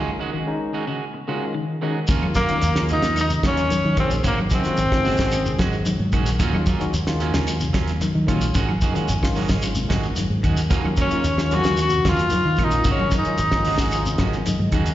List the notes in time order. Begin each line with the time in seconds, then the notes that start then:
Already playing: C#3 D#3 G#3 C#4 F4
0.19 D#3 G#3 C#4 F#4
0.33 D#3 G#3 C#4 F#4
0.46 D#3 G#3 C#4 D#4
0.73 D#3 G#3 C#4 F#4
0.87 C#3 G#3 C#4 F#4
1.14 muted clean electric guitar stroke
1.28 C#3 D#3 G#3 C#4 F4 F#4
1.54 D#3
1.82 D#3 G#3 C#4 D#4 F#4
2.07 D#2 C#3 A#3 C#4 F4, muted clean electric guitar stroke, kick, closed hi-hat, high conga, shekere
2.22 D#3 G#3 C#4 F4, high conga, claves
2.35 F#3 A#3 C#4 F4, kick, snare, closed hi-hat, high conga, shekere
2.49 D#3 G#3 A#3 C#4 F4, closed hi-hat, shekere
2.61 D#2, closed hi-hat, high conga, shekere
2.76 D#3 G#3 C#4 F4, snare, claves
2.89 F#3 A#3 D#4 F4, closed hi-hat, low conga, shekere
2.93 D#4
3.02 D#2 A#3 C#4 F4, snare, closed hi-hat, shekere
3.16 D#4, closed hi-hat, high conga, claves, shekere
3.21 D#4
3.30 C3, shekere
3.43 D#2 C#3 F#3 A#3 C#4 F4, kick, snare, closed hi-hat, high conga, low conga, claves
3.48 C#4
3.57 snare, closed hi-hat, shekere
3.70 D#3, muted fingered electric bass stroke, closed hi-hat, high conga, shekere
3.85 D#3, high conga
3.97 A#1 D#3 F#3 G#3 A#3 C4 C#4 F4 G#4, kick, closed hi-hat, low conga, claves, shekere
4.10 closed hi-hat, shekere
4.23 G#1 C#3 D#3 G#3 A#3 C#4 F#4, kick, closed hi-hat, high conga, shekere
4.28 A#3
4.38 high conga, claves
4.50 D#3 G#3 C4 C#4 F#4, kick, snare, closed hi-hat, high conga, shekere
4.55 C4
4.64 D#3 G#3 C#4 F4 F#4, snare, closed hi-hat, shekere
4.77 G#1, closed hi-hat, high conga, shekere
4.91 D#3 G#3 C#4 F4, kick, snare, claves
5.04 D#3 G#3 C#4 F#4, snare, open hi-hat, low conga, shekere
5.17 G#1 C#4 F#4, muted clean electric guitar stroke, kick, snare, shekere
5.31 D#3 G#3 C#4 G#4, closed hi-hat, high conga, claves, shekere
5.46 C3, shekere
5.58 G#1 C#3 G#3 C#4 F#4, kick, snare, closed hi-hat, high conga, low conga, claves
5.73 shekere
5.85 D#3, closed hi-hat, high conga, shekere
5.99 G#2, high conga
6.12 A#1 D#3 G#3 C#4 F#4, kick, closed hi-hat, low conga, claves, shekere
6.26 snare, closed hi-hat, shekere
6.39 D#2 F#3 A#3 C#4 F4, muted clean electric guitar stroke, kick, snare, closed hi-hat, high conga, shekere
6.53 D#3 G#3 C#4 F4, high conga, claves
6.66 F#3 A#3 C#4 F4, kick, closed hi-hat, high conga, shekere
6.79 D#3 G#3 C#4 F#4, closed hi-hat, shekere
6.93 D#2, closed hi-hat, high conga, shekere
7.07 D#3 G#3 C#4 F4, snare, claves
7.20 F#3 A#3 C#4 F4, snare, closed hi-hat, low conga, shekere
7.34 D#2 C#3 A#3 C#4 F4, snare, closed hi-hat, shekere
7.47 closed hi-hat, high conga, claves, shekere
7.60 C3, shekere
7.73 D#2 C#3 F#3 A#3 C#4 F4, kick, snare, closed hi-hat, high conga, claves
7.87 snare, closed hi-hat, shekere
8.01 D#3, muted fingered electric bass stroke, snare, closed hi-hat, high conga, shekere
8.15 D#3, high conga
8.27 A#1 D#3 F#3 G#3 A#3 C#4 F4, kick, closed hi-hat, low conga, claves, shekere
8.41 closed hi-hat, shekere
8.54 G#1 C#3 D#3 G#3 C#4 F#4, kick, closed hi-hat, high conga, shekere
8.69 high conga, claves
8.81 D#3 G#3 C#4 F#4, kick, closed hi-hat, high conga, shekere
8.94 D#3 G#3 C#4 F4 F#4, closed hi-hat, shekere
9.08 G#1, closed hi-hat, high conga, shekere
9.22 D#3 G#3 C#4 F4, kick, snare, claves
9.35 D#3 G#3 C#4 F#4, open hi-hat, high conga, low conga, shekere
9.49 G#1 C#3 G#3 C#4, muted clean electric guitar stroke, kick, snare, shekere
9.62 D#3 G#3 C#4 F4, closed hi-hat, high conga, claves, shekere
9.75 C3, shekere
9.89 G#1 C#3 D#3 G#3 C#4 F#4, kick, snare, closed hi-hat, high conga, low conga, claves
10.03 shekere
10.16 D#3, muted fingered electric bass stroke, snare, closed hi-hat, high conga, shekere
10.30 G#2
10.43 D#2 D#3 G#3 C#4 F#4, kick, closed hi-hat, low conga, claves, shekere
10.57 closed hi-hat, shekere
10.70 D#2 C#3 F#3 A#3 C#4 F4, kick, snare, closed hi-hat, shekere
10.82 D#3 G#3 C#4 F4, high conga, claves
10.97 F#3 A#3 C#4 F4, kick, snare, closed hi-hat, high conga, shekere
11.02 C#4
11.11 D#3 G#3 A#3 C#4 F4, closed hi-hat, shekere
11.24 D#2, closed hi-hat, high conga, shekere
11.38 D#3 G#3 C#4 F4, snare, claves
11.51 F#3 A#3 C#4 F4 F#4, snare, closed hi-hat, high conga, low conga, shekere
11.64 D#2 C#3 A#3 C#4 F4, snare, closed hi-hat, shekere
11.77 closed hi-hat, claves, shekere
11.82 F#4
11.90 C3, shekere
12.05 D#2 C#3 F#3 A#3 C#4 F4, kick, snare, closed hi-hat, high conga, low conga, claves
12.10 F4
12.17 snare, closed hi-hat, shekere
12.30 D#3, muted fingered electric bass stroke, closed hi-hat, high conga, shekere
12.45 D#3
12.56 A#1 D#3 F#3 G#3 A#3 C#4 F4, muted clean electric guitar stroke, kick, closed hi-hat, low conga, claves, shekere
12.63 D#4
12.71 closed hi-hat, shekere
12.84 G#1 C#3 D#3 G#3 C#4 F#4, kick, snare, closed hi-hat, high conga, shekere
12.90 C#4
12.99 high conga, claves
13.11 D#3 G#3 C#4, kick, snare, closed hi-hat, high conga, shekere
13.16 D#4
13.24 D#3 G#3 C#4 F4, closed hi-hat, shekere
13.38 G#1, closed hi-hat, high conga, shekere
13.51 D#3 G#3 C#4, kick, snare, claves
13.56 F4
13.65 D#3 G#3 C#4 F#4, open hi-hat, low conga, shekere
13.78 G#1 C#3 G#3 C#4 F#4, kick, snare, shekere
13.91 D#3 G#3 C#4 F4, closed hi-hat, high conga, claves, shekere
14.06 C3, shekere
14.18 G#1 C#3 D#3 G#3 C#4 F#4 G#5, kick, snare, closed hi-hat, high conga, low conga, claves
14.33 snare, shekere
14.46 D#3 D#5, closed hi-hat, high conga, shekere
14.59 G#2, high conga
14.72 D#2 D#3 G#3 C#4 F#4, kick, closed hi-hat, low conga, claves, shekere
14.86 closed hi-hat, shekere